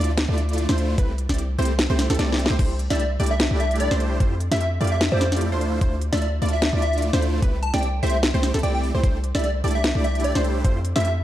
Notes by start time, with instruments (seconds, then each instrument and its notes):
Already playing: 808-style bass D2, supersaw synth A3 D4 E4 F4 D5, synth pluck D5
0.01 closed hi-hat
0.04 closed hi-hat
0.17 snare, closed hi-hat
0.29 808-style bass D2, supersaw synth A3 D4 E4 F4 D5, synth pluck D5
0.38 closed hi-hat
0.49 closed hi-hat
0.53 closed hi-hat
0.58 closed hi-hat
0.69 808-style bass D2, supersaw synth A3 D4 E4 F4 C5, synth pluck C5, snare
0.78 closed hi-hat
0.98 808-style bass C2, supersaw synth A3 C4 E4 G4 B4, synth pluck B4, kick, closed hi-hat
1.18 closed hi-hat
1.29 808-style bass C2, supersaw synth A3 C4 E4 G4 D5, synth pluck D5, kick, snare, closed hi-hat
1.34 closed hi-hat
1.38 closed hi-hat
1.59 808-style bass C2, supersaw synth A3 C4 E4 G4 C5, synth pluck C5, closed hi-hat
1.62 closed hi-hat
1.65 closed hi-hat
1.79 snare, closed hi-hat
1.90 808-style bass C2, supersaw synth A3 C4 E4 G4 C5, synth pluck C5
1.99 snare, closed hi-hat
2.10 808-style bass C2, supersaw synth A3 C4 E4 G4 A4, synth pluck A4, snare, closed hi-hat
2.14 closed hi-hat
2.19 808-style bass C2, supersaw synth A3 C4 E4 G4 D5, synth pluck D5, snare, closed hi-hat
2.32 snare
2.39 closed hi-hat
2.46 snare
2.50 808-style bass C2, supersaw synth A3 C4 E4 G4 C5, synth pluck C5
2.59 808-style bass C2, supersaw synth A3 D4 E4 G4 C5, synth pluck C5, kick, closed hi-hat, crash
2.79 closed hi-hat
2.90 808-style bass C2, supersaw synth A3 D4 E4 G4 E5, digital synth lead D5, synth pluck E5, snare, closed hi-hat
2.95 closed hi-hat
3.00 digital synth lead D5, closed hi-hat
3.20 808-style bass C2, supersaw synth A3 D4 E4 G4 D5, synth pluck D5, closed hi-hat
3.23 closed hi-hat
3.26 closed hi-hat
3.31 digital synth lead E5
3.40 snare, closed hi-hat
3.51 808-style bass C2, supersaw synth A3 D4 E4 G4 D5, synth pluck D5
3.60 digital synth lead E5, closed hi-hat
3.71 closed hi-hat
3.76 closed hi-hat
3.80 digital synth lead D5, closed hi-hat
3.91 808-style bass C2, supersaw synth A3 D4 E4 G4 C5, synth pluck C5, snare
4.00 closed hi-hat
4.20 808-style bass F2, supersaw synth A3 E4 F4 G4 C5, synth pluck C5, kick, closed hi-hat
4.40 closed hi-hat
4.51 808-style bass F2, supersaw synth A3 E4 F4 G4 E5, synth pluck E5, digital synth lead E5, snare, closed hi-hat
4.56 closed hi-hat
4.60 digital synth lead E5, closed hi-hat
4.81 808-style bass F2, supersaw synth A3 E4 F4 G4 D5, synth pluck D5, closed hi-hat
4.84 closed hi-hat
4.87 closed hi-hat
4.92 digital synth lead E5
5.01 snare, closed hi-hat
5.12 808-style bass F2, supersaw synth A3 E4 F4 G4 D5, digital synth lead C5, synth pluck D5
5.21 digital synth lead C5, snare, closed hi-hat
5.32 snare, closed hi-hat
5.37 closed hi-hat
5.41 closed hi-hat
5.52 808-style bass D2, supersaw synth A3 D4 E4 F4 C5, synth pluck C5
5.61 closed hi-hat
5.81 808-style bass D2, supersaw synth A3 D4 E4 F4 C5, synth pluck C5, kick, closed hi-hat
6.01 closed hi-hat
6.13 808-style bass D2, supersaw synth A3 D4 E4 F4 E5, digital synth lead D5, synth pluck E5, snare, closed hi-hat
6.17 closed hi-hat
6.22 digital synth lead D5, closed hi-hat
6.42 808-style bass D2, supersaw synth A3 D4 E4 F4 D5, synth pluck D5, closed hi-hat
6.46 closed hi-hat
6.49 closed hi-hat
6.53 digital synth lead E5
6.62 snare, closed hi-hat
6.73 808-style bass D2, supersaw synth A3 D4 E4 F4 D5, synth pluck D5
6.82 digital synth lead E5, closed hi-hat
6.93 closed hi-hat
6.98 closed hi-hat
7.02 closed hi-hat
7.13 808-style bass D2, supersaw synth A3 D4 E4 F4 C5, synth pluck C5, snare
7.22 closed hi-hat
7.42 808-style bass C2, supersaw synth A3 C4 E4 G4 B4, synth pluck B4, kick, closed hi-hat
7.63 digital synth lead A5, closed hi-hat
7.74 808-style bass C2, supersaw synth A3 C4 E4 G4 D5, synth pluck D5, digital synth lead G5, snare, closed hi-hat
7.78 closed hi-hat
7.83 closed hi-hat
8.03 808-style bass C2, supersaw synth A3 C4 E4 G4 C5, synth pluck C5, digital synth lead E5, closed hi-hat
8.06 closed hi-hat
8.10 closed hi-hat
8.23 snare, closed hi-hat
8.34 808-style bass C2, supersaw synth A3 C4 E4 G4 C5, synth pluck C5
8.43 snare, closed hi-hat
8.54 808-style bass C2, supersaw synth A3 C4 E4 G4 A4, synth pluck A4, snare, closed hi-hat
8.59 closed hi-hat
8.63 808-style bass C2, supersaw synth A3 C4 E4 G4 D5, synth pluck D5, digital synth lead G5, closed hi-hat
8.74 digital synth lead G5
8.83 open hi-hat
8.94 808-style bass C2, supersaw synth A3 C4 E4 G4 C5, synth pluck C5
9.03 808-style bass C2, supersaw synth A3 D4 E4 G4 C5, synth pluck C5, kick, closed hi-hat
9.24 closed hi-hat
9.35 808-style bass C2, supersaw synth A3 D4 E4 G4 E5, digital synth lead D5, synth pluck E5, snare, closed hi-hat
9.39 closed hi-hat
9.44 digital synth lead D5, closed hi-hat
9.64 808-style bass C2, supersaw synth A3 D4 E4 G4 D5, synth pluck D5, closed hi-hat
9.68 closed hi-hat
9.71 closed hi-hat
9.75 digital synth lead E5
9.84 snare, closed hi-hat
9.95 808-style bass C2, supersaw synth A3 D4 E4 G4 D5, synth pluck D5
10.04 digital synth lead E5, closed hi-hat
10.15 closed hi-hat
10.20 closed hi-hat
10.24 digital synth lead D5, closed hi-hat
10.35 808-style bass C2, supersaw synth A3 D4 E4 G4 C5, synth pluck C5, snare
10.44 closed hi-hat
10.64 808-style bass F2, supersaw synth A3 E4 F4 G4 C5, synth pluck C5, kick, closed hi-hat
10.85 closed hi-hat
10.96 808-style bass F2, supersaw synth A3 E4 F4 G4 E5, digital synth lead E5, synth pluck E5, snare, closed hi-hat
11.00 closed hi-hat
11.05 digital synth lead E5, closed hi-hat